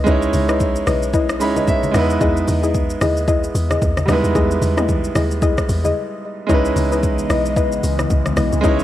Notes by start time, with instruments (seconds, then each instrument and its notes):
0.04 log drum bass C#2, grand piano G#3 C#4 D#4, synth pluck E4 B4 D#5, kick, low conga, shaker
0.09 grand piano E4 C#5
0.22 shaker
0.33 log drum bass C#2, open hi-hat, high conga, shaker
0.49 synth pluck E4 B4 D#5, cross-stick, shaker
0.60 kick, shaker
0.76 shaker
0.87 log drum bass B1, synth pluck E4 B4 D#5, cross-stick, open hi-hat, high conga, shaker
1.02 shaker
1.14 synth pluck E4 B4 D#5, kick, shaker
1.29 cross-stick, shaker
1.40 log drum bass C#2, grand piano G#3 C#4 D#4 E4 C#5 B5, open hi-hat, shaker
1.56 synth pluck E4 B4 D#5, high conga, shaker
1.68 grand piano E5, kick, low conga, shaker
1.83 high conga, shaker
1.91 log drum bass E2, grand piano G#3 B3 D#4, synth pluck E4 G#4 D#5, cross-stick, open hi-hat, high conga, low conga, shaker
1.97 grand piano E4 B4
2.10 shaker
2.21 log drum bass E2, synth pluck E4 G#4 D#5, kick, low conga, shaker
2.37 shaker
2.47 log drum bass E2, open hi-hat, high conga, shaker
2.63 synth pluck E4 G#4 D#5, shaker
2.75 kick, shaker
2.90 shaker
3.01 log drum bass D#2, synth pluck E4 G#4 D#5, cross-stick, open hi-hat, high conga, shaker
3.17 shaker
3.28 synth pluck E4 G#4 D#5, kick, shaker
3.44 shaker
3.55 log drum bass E2, open hi-hat, shaker
3.70 synth pluck E4 G#4 D#5, cross-stick, high conga, shaker
3.82 log drum bass E2, kick, low conga, shaker
3.97 cross-stick, high conga, shaker
4.06 log drum bass D#2, grand piano G3 B3 D#4, synth pluck E4 G#4 D#5, cross-stick, open hi-hat, high conga, low conga, shaker
4.11 grand piano G#3 E4 B4
4.24 log drum bass E2, shaker
4.35 log drum bass E2, synth pluck E4 G#4 D#5, kick, low conga, shaker
4.51 shaker
4.62 log drum bass E2, open hi-hat, high conga, shaker
4.77 synth pluck E4 G#4 D#5, cross-stick, mid tom, shaker
4.89 kick, shaker
5.04 shaker
5.15 log drum bass D#2, synth pluck E4 G#4 D#5, cross-stick, open hi-hat, high conga, shaker
5.31 shaker
5.42 synth pluck E4 G#4 D#5, kick, shaker
5.58 kick, cross-stick, shaker
5.69 log drum bass E2, open hi-hat, shaker
5.84 synth pluck E4 G#4 D#5, high conga, shaker
6.47 log drum bass C#2, analog synth pad C#3 E3 G#3 B3 D#5, grand piano G#3 C#4 D#4, synth pluck E4 B4 D#5, kick, low conga, shaker
6.52 grand piano E4 B4
6.65 shaker
6.76 log drum bass C#2, open hi-hat, high conga, shaker
6.92 synth pluck E4 B4 D#5, shaker
7.03 kick, shaker
7.18 shaker
7.30 log drum bass B1, synth pluck E4 B4 D#5, cross-stick, open hi-hat, high conga, shaker
7.45 shaker
7.56 synth pluck E4 B4 D#5, kick, shaker
7.72 shaker
7.83 log drum bass C#2, open hi-hat, shaker
7.99 synth pluck E4 B4 D#5, cross-stick, high conga, shaker
8.10 log drum bass C#2, kick, low conga, shaker
8.26 cross-stick, high conga, shaker
8.37 log drum bass B1, synth pluck E4 B4 D#5, cross-stick, open hi-hat, high conga, low conga, shaker
8.52 log drum bass C#2, shaker
8.61 log drum bass C#2, grand piano G#3 C#4 D#4, analog synth pad C#4, synth pluck E4 B4 D#5, kick, low conga, shaker
8.66 grand piano E4 C#5
8.79 shaker